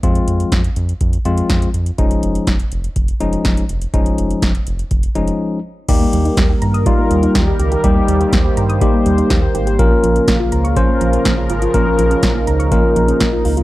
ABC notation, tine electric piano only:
X:1
M:4/4
L:1/8
Q:1/4=123
K:Ebmix
V:1 name="Tine electric piano"
[F,A,CF]2 z3 [F,A,CF]2 z | [F,A,DE]2 z3 [F,A,DE]2 z | [F,A,DE]2 z3 [F,A,DE]2 z | [G,B,EG]2 z2 [G,B,EF]2 z2 |
[G,B,EG]2 z2 [G,B,EG]2 z2 | [B,DFB]2 z2 [B,DFc]2 z2 | [B,DFB]2 z2 [B,DFB]2 z2 |]